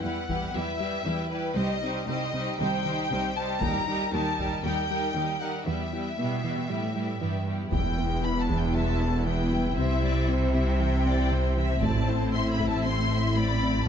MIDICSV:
0, 0, Header, 1, 10, 480
1, 0, Start_track
1, 0, Key_signature, 1, "minor"
1, 0, Tempo, 512821
1, 1470, Time_signature, 4, 2, 24, 8
1, 7230, Key_signature, 1, "minor"
1, 12994, End_track
2, 0, Start_track
2, 0, Title_t, "Violin section"
2, 0, Program_c, 0, 48
2, 33, Note_on_c, 0, 78, 58
2, 512, Note_off_c, 0, 78, 0
2, 515, Note_on_c, 0, 76, 64
2, 1233, Note_off_c, 0, 76, 0
2, 1233, Note_on_c, 0, 71, 58
2, 1464, Note_on_c, 0, 75, 63
2, 1467, Note_off_c, 0, 71, 0
2, 1936, Note_off_c, 0, 75, 0
2, 1947, Note_on_c, 0, 75, 65
2, 2419, Note_off_c, 0, 75, 0
2, 2432, Note_on_c, 0, 79, 76
2, 3137, Note_off_c, 0, 79, 0
2, 3150, Note_on_c, 0, 81, 75
2, 3389, Note_on_c, 0, 82, 80
2, 3390, Note_off_c, 0, 81, 0
2, 3867, Note_on_c, 0, 81, 74
2, 3869, Note_off_c, 0, 82, 0
2, 4339, Note_off_c, 0, 81, 0
2, 4348, Note_on_c, 0, 79, 79
2, 5054, Note_off_c, 0, 79, 0
2, 5070, Note_on_c, 0, 78, 61
2, 5310, Note_off_c, 0, 78, 0
2, 5314, Note_on_c, 0, 76, 56
2, 6959, Note_off_c, 0, 76, 0
2, 7231, Note_on_c, 0, 79, 60
2, 7677, Note_off_c, 0, 79, 0
2, 7707, Note_on_c, 0, 83, 60
2, 7869, Note_off_c, 0, 83, 0
2, 7878, Note_on_c, 0, 81, 55
2, 8030, Note_on_c, 0, 79, 54
2, 8034, Note_off_c, 0, 81, 0
2, 8187, Note_on_c, 0, 81, 60
2, 8190, Note_off_c, 0, 79, 0
2, 8669, Note_off_c, 0, 81, 0
2, 8672, Note_on_c, 0, 79, 56
2, 9142, Note_off_c, 0, 79, 0
2, 9152, Note_on_c, 0, 76, 66
2, 9856, Note_off_c, 0, 76, 0
2, 9872, Note_on_c, 0, 76, 51
2, 10106, Note_off_c, 0, 76, 0
2, 10112, Note_on_c, 0, 79, 59
2, 10831, Note_off_c, 0, 79, 0
2, 11065, Note_on_c, 0, 81, 62
2, 11514, Note_off_c, 0, 81, 0
2, 11551, Note_on_c, 0, 84, 63
2, 11708, Note_off_c, 0, 84, 0
2, 11715, Note_on_c, 0, 83, 59
2, 11870, Note_off_c, 0, 83, 0
2, 11882, Note_on_c, 0, 81, 60
2, 12027, Note_on_c, 0, 84, 69
2, 12033, Note_off_c, 0, 81, 0
2, 12499, Note_off_c, 0, 84, 0
2, 12505, Note_on_c, 0, 83, 70
2, 12987, Note_off_c, 0, 83, 0
2, 12994, End_track
3, 0, Start_track
3, 0, Title_t, "Violin section"
3, 0, Program_c, 1, 48
3, 34, Note_on_c, 1, 67, 38
3, 35, Note_on_c, 1, 71, 38
3, 254, Note_off_c, 1, 71, 0
3, 255, Note_off_c, 1, 67, 0
3, 265, Note_on_c, 1, 71, 36
3, 266, Note_on_c, 1, 67, 36
3, 498, Note_off_c, 1, 67, 0
3, 500, Note_off_c, 1, 71, 0
3, 509, Note_on_c, 1, 67, 41
3, 511, Note_on_c, 1, 71, 38
3, 737, Note_off_c, 1, 67, 0
3, 738, Note_off_c, 1, 71, 0
3, 749, Note_on_c, 1, 67, 39
3, 749, Note_on_c, 1, 71, 39
3, 973, Note_off_c, 1, 67, 0
3, 974, Note_off_c, 1, 71, 0
3, 984, Note_on_c, 1, 67, 39
3, 985, Note_on_c, 1, 71, 36
3, 1212, Note_off_c, 1, 67, 0
3, 1212, Note_off_c, 1, 71, 0
3, 1223, Note_on_c, 1, 67, 41
3, 1223, Note_on_c, 1, 71, 40
3, 1452, Note_off_c, 1, 67, 0
3, 1462, Note_off_c, 1, 71, 0
3, 1463, Note_on_c, 1, 67, 44
3, 1468, Note_on_c, 1, 72, 41
3, 1697, Note_off_c, 1, 67, 0
3, 1697, Note_off_c, 1, 72, 0
3, 1708, Note_on_c, 1, 67, 41
3, 1708, Note_on_c, 1, 72, 40
3, 1931, Note_off_c, 1, 72, 0
3, 1936, Note_off_c, 1, 67, 0
3, 1943, Note_on_c, 1, 72, 42
3, 1948, Note_on_c, 1, 67, 43
3, 2182, Note_off_c, 1, 72, 0
3, 2184, Note_off_c, 1, 67, 0
3, 2191, Note_on_c, 1, 72, 41
3, 2194, Note_on_c, 1, 67, 45
3, 2415, Note_off_c, 1, 72, 0
3, 2418, Note_off_c, 1, 67, 0
3, 2426, Note_on_c, 1, 72, 49
3, 2430, Note_on_c, 1, 67, 47
3, 2656, Note_off_c, 1, 67, 0
3, 2661, Note_off_c, 1, 72, 0
3, 2667, Note_on_c, 1, 67, 45
3, 2672, Note_on_c, 1, 72, 44
3, 2895, Note_off_c, 1, 67, 0
3, 2899, Note_off_c, 1, 72, 0
3, 2906, Note_on_c, 1, 67, 45
3, 2911, Note_on_c, 1, 72, 44
3, 3139, Note_off_c, 1, 67, 0
3, 3143, Note_off_c, 1, 72, 0
3, 3150, Note_on_c, 1, 67, 50
3, 3154, Note_on_c, 1, 72, 49
3, 3386, Note_off_c, 1, 67, 0
3, 3387, Note_off_c, 1, 72, 0
3, 3393, Note_on_c, 1, 70, 49
3, 3396, Note_on_c, 1, 67, 51
3, 3621, Note_off_c, 1, 70, 0
3, 3623, Note_off_c, 1, 67, 0
3, 3632, Note_on_c, 1, 70, 44
3, 3635, Note_on_c, 1, 67, 47
3, 3859, Note_off_c, 1, 67, 0
3, 3862, Note_off_c, 1, 70, 0
3, 3870, Note_on_c, 1, 67, 44
3, 3873, Note_on_c, 1, 70, 43
3, 4096, Note_off_c, 1, 70, 0
3, 4097, Note_off_c, 1, 67, 0
3, 4107, Note_on_c, 1, 70, 44
3, 4108, Note_on_c, 1, 67, 44
3, 4336, Note_off_c, 1, 67, 0
3, 4338, Note_off_c, 1, 70, 0
3, 4347, Note_on_c, 1, 67, 46
3, 4349, Note_on_c, 1, 70, 47
3, 4576, Note_off_c, 1, 67, 0
3, 4577, Note_off_c, 1, 70, 0
3, 4587, Note_on_c, 1, 67, 42
3, 4588, Note_on_c, 1, 70, 44
3, 4813, Note_off_c, 1, 67, 0
3, 4816, Note_off_c, 1, 70, 0
3, 4824, Note_on_c, 1, 67, 38
3, 4827, Note_on_c, 1, 70, 37
3, 5055, Note_off_c, 1, 70, 0
3, 5057, Note_off_c, 1, 67, 0
3, 5066, Note_on_c, 1, 70, 37
3, 5069, Note_on_c, 1, 67, 37
3, 5293, Note_off_c, 1, 67, 0
3, 5303, Note_off_c, 1, 70, 0
3, 5303, Note_on_c, 1, 64, 39
3, 5305, Note_on_c, 1, 67, 38
3, 5538, Note_off_c, 1, 67, 0
3, 5542, Note_off_c, 1, 64, 0
3, 5549, Note_on_c, 1, 67, 34
3, 5551, Note_on_c, 1, 64, 33
3, 5777, Note_off_c, 1, 64, 0
3, 5781, Note_off_c, 1, 67, 0
3, 5788, Note_on_c, 1, 64, 34
3, 5792, Note_on_c, 1, 67, 34
3, 6024, Note_off_c, 1, 64, 0
3, 6026, Note_off_c, 1, 67, 0
3, 6036, Note_on_c, 1, 67, 33
3, 6037, Note_on_c, 1, 64, 33
3, 6255, Note_off_c, 1, 67, 0
3, 6258, Note_off_c, 1, 64, 0
3, 6266, Note_on_c, 1, 67, 37
3, 6269, Note_on_c, 1, 64, 37
3, 6497, Note_off_c, 1, 64, 0
3, 6498, Note_off_c, 1, 67, 0
3, 6508, Note_on_c, 1, 64, 33
3, 6509, Note_on_c, 1, 67, 32
3, 6742, Note_off_c, 1, 67, 0
3, 6744, Note_off_c, 1, 64, 0
3, 6753, Note_on_c, 1, 67, 31
3, 6758, Note_on_c, 1, 64, 30
3, 6983, Note_off_c, 1, 64, 0
3, 6983, Note_off_c, 1, 67, 0
3, 6994, Note_on_c, 1, 64, 31
3, 6995, Note_on_c, 1, 67, 31
3, 7228, Note_off_c, 1, 64, 0
3, 7228, Note_off_c, 1, 67, 0
3, 8189, Note_on_c, 1, 76, 49
3, 8413, Note_off_c, 1, 76, 0
3, 8432, Note_on_c, 1, 69, 43
3, 8671, Note_off_c, 1, 69, 0
3, 8674, Note_on_c, 1, 71, 39
3, 9152, Note_off_c, 1, 71, 0
3, 9153, Note_on_c, 1, 72, 47
3, 9392, Note_off_c, 1, 72, 0
3, 9393, Note_on_c, 1, 74, 49
3, 9632, Note_off_c, 1, 74, 0
3, 9640, Note_on_c, 1, 72, 49
3, 10114, Note_on_c, 1, 76, 52
3, 10115, Note_off_c, 1, 72, 0
3, 10352, Note_off_c, 1, 76, 0
3, 10359, Note_on_c, 1, 74, 51
3, 10590, Note_off_c, 1, 74, 0
3, 10599, Note_on_c, 1, 72, 47
3, 10835, Note_off_c, 1, 72, 0
3, 10836, Note_on_c, 1, 76, 56
3, 11068, Note_off_c, 1, 76, 0
3, 11068, Note_on_c, 1, 74, 52
3, 11309, Note_off_c, 1, 74, 0
3, 11314, Note_on_c, 1, 72, 50
3, 11552, Note_off_c, 1, 72, 0
3, 11554, Note_on_c, 1, 76, 51
3, 12032, Note_off_c, 1, 76, 0
3, 12035, Note_on_c, 1, 72, 57
3, 12272, Note_off_c, 1, 72, 0
3, 12277, Note_on_c, 1, 76, 61
3, 12514, Note_off_c, 1, 76, 0
3, 12515, Note_on_c, 1, 74, 53
3, 12983, Note_off_c, 1, 74, 0
3, 12994, End_track
4, 0, Start_track
4, 0, Title_t, "French horn section"
4, 0, Program_c, 2, 60
4, 7235, Note_on_c, 2, 59, 40
4, 7240, Note_on_c, 2, 64, 38
4, 9115, Note_off_c, 2, 59, 0
4, 9147, Note_on_c, 2, 60, 43
4, 11038, Note_off_c, 2, 64, 0
4, 11077, Note_on_c, 2, 64, 48
4, 12951, Note_off_c, 2, 60, 0
4, 12956, Note_off_c, 2, 64, 0
4, 12994, End_track
5, 0, Start_track
5, 0, Title_t, "Viola section"
5, 0, Program_c, 3, 48
5, 31, Note_on_c, 3, 55, 38
5, 31, Note_on_c, 3, 64, 38
5, 261, Note_off_c, 3, 55, 0
5, 262, Note_off_c, 3, 64, 0
5, 272, Note_on_c, 3, 55, 34
5, 273, Note_on_c, 3, 64, 34
5, 496, Note_off_c, 3, 64, 0
5, 498, Note_off_c, 3, 55, 0
5, 508, Note_on_c, 3, 64, 40
5, 509, Note_on_c, 3, 55, 37
5, 735, Note_off_c, 3, 64, 0
5, 737, Note_off_c, 3, 55, 0
5, 746, Note_on_c, 3, 64, 36
5, 749, Note_on_c, 3, 55, 37
5, 978, Note_off_c, 3, 64, 0
5, 979, Note_off_c, 3, 55, 0
5, 989, Note_on_c, 3, 64, 38
5, 990, Note_on_c, 3, 55, 36
5, 1215, Note_off_c, 3, 55, 0
5, 1217, Note_off_c, 3, 64, 0
5, 1226, Note_on_c, 3, 55, 37
5, 1228, Note_on_c, 3, 64, 37
5, 1459, Note_off_c, 3, 55, 0
5, 1464, Note_off_c, 3, 64, 0
5, 1470, Note_on_c, 3, 55, 43
5, 1472, Note_on_c, 3, 63, 46
5, 1700, Note_off_c, 3, 55, 0
5, 1702, Note_off_c, 3, 63, 0
5, 1712, Note_on_c, 3, 55, 44
5, 1713, Note_on_c, 3, 63, 45
5, 1939, Note_off_c, 3, 63, 0
5, 1940, Note_off_c, 3, 55, 0
5, 1950, Note_on_c, 3, 63, 44
5, 1951, Note_on_c, 3, 55, 43
5, 2179, Note_off_c, 3, 55, 0
5, 2180, Note_off_c, 3, 63, 0
5, 2190, Note_on_c, 3, 55, 41
5, 2191, Note_on_c, 3, 63, 42
5, 2420, Note_off_c, 3, 55, 0
5, 2421, Note_off_c, 3, 63, 0
5, 2432, Note_on_c, 3, 55, 45
5, 2433, Note_on_c, 3, 63, 43
5, 2658, Note_off_c, 3, 55, 0
5, 2658, Note_off_c, 3, 63, 0
5, 2669, Note_on_c, 3, 63, 46
5, 2670, Note_on_c, 3, 55, 42
5, 2899, Note_off_c, 3, 55, 0
5, 2900, Note_off_c, 3, 63, 0
5, 2910, Note_on_c, 3, 55, 45
5, 2911, Note_on_c, 3, 63, 43
5, 3143, Note_off_c, 3, 63, 0
5, 3145, Note_off_c, 3, 55, 0
5, 3154, Note_on_c, 3, 63, 44
5, 3155, Note_on_c, 3, 55, 43
5, 3385, Note_off_c, 3, 55, 0
5, 3387, Note_off_c, 3, 63, 0
5, 3397, Note_on_c, 3, 55, 51
5, 3397, Note_on_c, 3, 63, 52
5, 3622, Note_off_c, 3, 63, 0
5, 3624, Note_off_c, 3, 55, 0
5, 3634, Note_on_c, 3, 63, 49
5, 3635, Note_on_c, 3, 55, 51
5, 3857, Note_off_c, 3, 55, 0
5, 3857, Note_off_c, 3, 63, 0
5, 3869, Note_on_c, 3, 55, 46
5, 3869, Note_on_c, 3, 63, 50
5, 4096, Note_off_c, 3, 55, 0
5, 4097, Note_off_c, 3, 63, 0
5, 4108, Note_on_c, 3, 55, 42
5, 4108, Note_on_c, 3, 63, 44
5, 4335, Note_off_c, 3, 55, 0
5, 4336, Note_off_c, 3, 63, 0
5, 4346, Note_on_c, 3, 55, 42
5, 4347, Note_on_c, 3, 63, 45
5, 4581, Note_off_c, 3, 63, 0
5, 4583, Note_off_c, 3, 55, 0
5, 4592, Note_on_c, 3, 63, 40
5, 4593, Note_on_c, 3, 55, 41
5, 4818, Note_off_c, 3, 55, 0
5, 4818, Note_off_c, 3, 63, 0
5, 4829, Note_on_c, 3, 55, 39
5, 4829, Note_on_c, 3, 63, 40
5, 5056, Note_off_c, 3, 63, 0
5, 5059, Note_off_c, 3, 55, 0
5, 5067, Note_on_c, 3, 63, 36
5, 5070, Note_on_c, 3, 55, 36
5, 5297, Note_off_c, 3, 55, 0
5, 5304, Note_off_c, 3, 63, 0
5, 5308, Note_on_c, 3, 55, 41
5, 5310, Note_on_c, 3, 59, 38
5, 5538, Note_off_c, 3, 55, 0
5, 5540, Note_off_c, 3, 59, 0
5, 5549, Note_on_c, 3, 55, 35
5, 5551, Note_on_c, 3, 59, 34
5, 5778, Note_off_c, 3, 55, 0
5, 5780, Note_off_c, 3, 59, 0
5, 5790, Note_on_c, 3, 55, 35
5, 5791, Note_on_c, 3, 59, 37
5, 6021, Note_off_c, 3, 55, 0
5, 6021, Note_off_c, 3, 59, 0
5, 6032, Note_on_c, 3, 55, 30
5, 6032, Note_on_c, 3, 59, 31
5, 6259, Note_off_c, 3, 55, 0
5, 6260, Note_off_c, 3, 59, 0
5, 6270, Note_on_c, 3, 55, 35
5, 6272, Note_on_c, 3, 59, 32
5, 6497, Note_off_c, 3, 55, 0
5, 6499, Note_off_c, 3, 59, 0
5, 6508, Note_on_c, 3, 55, 32
5, 6511, Note_on_c, 3, 59, 29
5, 6737, Note_off_c, 3, 55, 0
5, 6737, Note_off_c, 3, 59, 0
5, 6748, Note_on_c, 3, 55, 31
5, 6748, Note_on_c, 3, 59, 31
5, 6977, Note_off_c, 3, 55, 0
5, 6977, Note_off_c, 3, 59, 0
5, 6988, Note_on_c, 3, 55, 32
5, 6989, Note_on_c, 3, 59, 29
5, 7218, Note_off_c, 3, 59, 0
5, 7224, Note_off_c, 3, 55, 0
5, 7227, Note_on_c, 3, 64, 47
5, 7229, Note_on_c, 3, 59, 44
5, 9112, Note_off_c, 3, 59, 0
5, 9148, Note_on_c, 3, 60, 45
5, 11031, Note_off_c, 3, 64, 0
5, 11069, Note_on_c, 3, 64, 52
5, 12952, Note_off_c, 3, 60, 0
5, 12952, Note_off_c, 3, 64, 0
5, 12994, End_track
6, 0, Start_track
6, 0, Title_t, "Synth arpeggio sound"
6, 0, Program_c, 4, 84
6, 36, Note_on_c, 4, 59, 47
6, 178, Note_off_c, 4, 59, 0
6, 274, Note_on_c, 4, 52, 66
6, 417, Note_off_c, 4, 52, 0
6, 509, Note_on_c, 4, 55, 46
6, 653, Note_off_c, 4, 55, 0
6, 752, Note_on_c, 4, 55, 52
6, 896, Note_off_c, 4, 55, 0
6, 993, Note_on_c, 4, 52, 75
6, 1136, Note_off_c, 4, 52, 0
6, 1473, Note_on_c, 4, 48, 70
6, 1616, Note_off_c, 4, 48, 0
6, 1715, Note_on_c, 4, 60, 45
6, 1857, Note_off_c, 4, 60, 0
6, 1952, Note_on_c, 4, 55, 50
6, 2096, Note_off_c, 4, 55, 0
6, 2187, Note_on_c, 4, 48, 73
6, 2332, Note_off_c, 4, 48, 0
6, 2431, Note_on_c, 4, 51, 52
6, 2575, Note_off_c, 4, 51, 0
6, 2672, Note_on_c, 4, 51, 50
6, 2815, Note_off_c, 4, 51, 0
6, 2909, Note_on_c, 4, 48, 80
6, 3053, Note_off_c, 4, 48, 0
6, 3393, Note_on_c, 4, 51, 75
6, 3536, Note_off_c, 4, 51, 0
6, 3629, Note_on_c, 4, 63, 51
6, 3773, Note_off_c, 4, 63, 0
6, 3871, Note_on_c, 4, 58, 51
6, 4015, Note_off_c, 4, 58, 0
6, 4115, Note_on_c, 4, 51, 69
6, 4258, Note_off_c, 4, 51, 0
6, 4348, Note_on_c, 4, 55, 53
6, 4492, Note_off_c, 4, 55, 0
6, 4590, Note_on_c, 4, 55, 51
6, 4734, Note_off_c, 4, 55, 0
6, 4828, Note_on_c, 4, 51, 75
6, 4973, Note_off_c, 4, 51, 0
6, 5308, Note_on_c, 4, 52, 65
6, 5453, Note_off_c, 4, 52, 0
6, 5550, Note_on_c, 4, 64, 48
6, 5694, Note_off_c, 4, 64, 0
6, 5791, Note_on_c, 4, 59, 43
6, 5935, Note_off_c, 4, 59, 0
6, 6029, Note_on_c, 4, 52, 64
6, 6173, Note_off_c, 4, 52, 0
6, 6272, Note_on_c, 4, 55, 49
6, 6415, Note_off_c, 4, 55, 0
6, 6510, Note_on_c, 4, 55, 50
6, 6654, Note_off_c, 4, 55, 0
6, 6751, Note_on_c, 4, 52, 70
6, 6895, Note_off_c, 4, 52, 0
6, 7227, Note_on_c, 4, 52, 71
6, 7372, Note_off_c, 4, 52, 0
6, 7473, Note_on_c, 4, 59, 51
6, 7616, Note_off_c, 4, 59, 0
6, 7710, Note_on_c, 4, 64, 51
6, 7854, Note_off_c, 4, 64, 0
6, 7953, Note_on_c, 4, 52, 69
6, 8096, Note_off_c, 4, 52, 0
6, 8193, Note_on_c, 4, 55, 53
6, 8336, Note_off_c, 4, 55, 0
6, 8430, Note_on_c, 4, 64, 51
6, 8574, Note_off_c, 4, 64, 0
6, 8670, Note_on_c, 4, 52, 77
6, 8814, Note_off_c, 4, 52, 0
6, 8915, Note_on_c, 4, 55, 50
6, 9057, Note_off_c, 4, 55, 0
6, 9150, Note_on_c, 4, 48, 69
6, 9294, Note_off_c, 4, 48, 0
6, 9389, Note_on_c, 4, 55, 49
6, 9533, Note_off_c, 4, 55, 0
6, 9626, Note_on_c, 4, 60, 51
6, 9771, Note_off_c, 4, 60, 0
6, 9866, Note_on_c, 4, 48, 68
6, 10012, Note_off_c, 4, 48, 0
6, 10110, Note_on_c, 4, 52, 50
6, 10254, Note_off_c, 4, 52, 0
6, 10352, Note_on_c, 4, 60, 52
6, 10495, Note_off_c, 4, 60, 0
6, 10591, Note_on_c, 4, 48, 74
6, 10735, Note_off_c, 4, 48, 0
6, 10830, Note_on_c, 4, 52, 51
6, 10974, Note_off_c, 4, 52, 0
6, 11071, Note_on_c, 4, 57, 68
6, 11215, Note_off_c, 4, 57, 0
6, 11310, Note_on_c, 4, 64, 53
6, 11454, Note_off_c, 4, 64, 0
6, 11553, Note_on_c, 4, 69, 49
6, 11696, Note_off_c, 4, 69, 0
6, 11792, Note_on_c, 4, 57, 68
6, 11935, Note_off_c, 4, 57, 0
6, 12036, Note_on_c, 4, 60, 53
6, 12178, Note_off_c, 4, 60, 0
6, 12273, Note_on_c, 4, 69, 49
6, 12416, Note_off_c, 4, 69, 0
6, 12514, Note_on_c, 4, 57, 78
6, 12657, Note_off_c, 4, 57, 0
6, 12755, Note_on_c, 4, 60, 56
6, 12897, Note_off_c, 4, 60, 0
6, 12994, End_track
7, 0, Start_track
7, 0, Title_t, "Cello section"
7, 0, Program_c, 5, 48
7, 28, Note_on_c, 5, 40, 44
7, 431, Note_off_c, 5, 40, 0
7, 507, Note_on_c, 5, 40, 50
7, 910, Note_off_c, 5, 40, 0
7, 989, Note_on_c, 5, 40, 49
7, 1391, Note_off_c, 5, 40, 0
7, 1464, Note_on_c, 5, 36, 57
7, 1869, Note_off_c, 5, 36, 0
7, 1944, Note_on_c, 5, 36, 50
7, 2349, Note_off_c, 5, 36, 0
7, 2431, Note_on_c, 5, 36, 55
7, 2832, Note_off_c, 5, 36, 0
7, 2912, Note_on_c, 5, 36, 57
7, 3313, Note_off_c, 5, 36, 0
7, 3391, Note_on_c, 5, 39, 65
7, 3792, Note_off_c, 5, 39, 0
7, 3869, Note_on_c, 5, 39, 59
7, 4271, Note_off_c, 5, 39, 0
7, 4351, Note_on_c, 5, 39, 58
7, 4752, Note_off_c, 5, 39, 0
7, 4830, Note_on_c, 5, 39, 49
7, 5232, Note_off_c, 5, 39, 0
7, 5311, Note_on_c, 5, 40, 50
7, 5712, Note_off_c, 5, 40, 0
7, 5792, Note_on_c, 5, 47, 41
7, 6238, Note_off_c, 5, 47, 0
7, 6270, Note_on_c, 5, 45, 40
7, 6749, Note_on_c, 5, 43, 35
7, 6750, Note_off_c, 5, 45, 0
7, 7220, Note_off_c, 5, 43, 0
7, 7229, Note_on_c, 5, 40, 44
7, 9112, Note_off_c, 5, 40, 0
7, 9148, Note_on_c, 5, 48, 50
7, 11069, Note_off_c, 5, 48, 0
7, 11069, Note_on_c, 5, 45, 52
7, 12952, Note_off_c, 5, 45, 0
7, 12994, End_track
8, 0, Start_track
8, 0, Title_t, "Double bass section"
8, 0, Program_c, 6, 48
8, 7228, Note_on_c, 6, 28, 46
8, 9111, Note_off_c, 6, 28, 0
8, 9148, Note_on_c, 6, 36, 46
8, 11067, Note_on_c, 6, 33, 52
8, 11069, Note_off_c, 6, 36, 0
8, 12951, Note_off_c, 6, 33, 0
8, 12994, End_track
9, 0, Start_track
9, 0, Title_t, "Sub bass"
9, 0, Program_c, 7, 38
9, 7228, Note_on_c, 7, 28, 54
9, 9152, Note_on_c, 7, 36, 52
9, 9166, Note_off_c, 7, 28, 0
9, 11072, Note_on_c, 7, 33, 55
9, 11086, Note_off_c, 7, 36, 0
9, 12994, Note_off_c, 7, 33, 0
9, 12994, End_track
10, 0, Start_track
10, 0, Title_t, "Taiko and cinematic ensemble drums"
10, 271, Note_on_c, 9, 41, 30
10, 365, Note_off_c, 9, 41, 0
10, 3387, Note_on_c, 9, 41, 55
10, 3481, Note_off_c, 9, 41, 0
10, 4109, Note_on_c, 9, 41, 30
10, 4202, Note_off_c, 9, 41, 0
10, 7228, Note_on_c, 9, 41, 55
10, 7322, Note_off_c, 9, 41, 0
10, 7949, Note_on_c, 9, 41, 31
10, 8042, Note_off_c, 9, 41, 0
10, 11067, Note_on_c, 9, 41, 56
10, 11161, Note_off_c, 9, 41, 0
10, 11786, Note_on_c, 9, 41, 33
10, 11880, Note_off_c, 9, 41, 0
10, 12994, End_track
0, 0, End_of_file